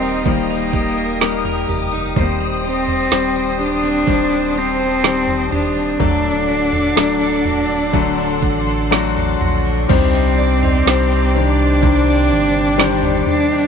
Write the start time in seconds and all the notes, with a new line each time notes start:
Already playing: D#1 D#3 G3 A#3 C4 D#4 G4 A#4 D#5 G5 D#6
0.02 D#4
0.25 D#3 G3 A#3 D#4 A#4 C5, kick
0.50 D#4
0.73 G4, kick
0.98 A#4
1.20 G3 A#3 D#4 G4 A#4, snare
1.45 A#4, floor tom
1.69 F1 G4, floor tom
1.93 D#4
2.16 D#1 D#3 G3 A#3 C4 D#4 C5 G5, kick, floor tom
2.40 C4
2.64 C4 G4
2.88 C5, floor tom
3.12 D#1 G3 C4 G4 C5, snare
3.36 C5
3.59 D4 G4
3.83 C4
4.07 D#1 D#3 G3 C4 C5 A5, kick
4.31 C4
4.55 C4 G4
4.79 C5
5.03 D#3 G3 C4 G4 C5, snare
5.27 C5, floor tom
5.52 D#1 D4 G4, floor tom
5.76 C4
5.99 D1 D3 F#3 A3 D4 A4 D5 F#5 D6, kick, floor tom
6.24 D4
6.48 F#4
6.72 A4, floor tom
6.96 D1 F#3 A3 D4 A4, snare
7.21 A4
7.45 F#4, floor tom
7.69 D4
7.93 D3 F#3 A3 D4 A4 C6, kick
8.18 D4
8.42 A1 F#4, kick
8.67 A4
8.91 F#3 A3 D4 F#4, snare
9.16 A4, floor tom
9.41 A#1 F#4, floor tom
9.65 D4
9.89 C2 C3 G3 C4 D4 D#4 C5 D5 G5 D6, kick, floor tom, crash
10.14 D#4
10.38 D5
10.62 D#4, floor tom
10.86 C2 G3 C4 D4 D#4 G4 C5, snare
11.11 D#4
11.34 D#3 G3 C4 D4 G4 C5
11.82 C3 D#3 G3 C4 D4 C5, kick
12.30 G1 D5
12.78 D#3 G3 C4 D4 G4 C5, snare
13.02 D#4, floor tom
13.26 D4 G4, floor tom
13.51 D#4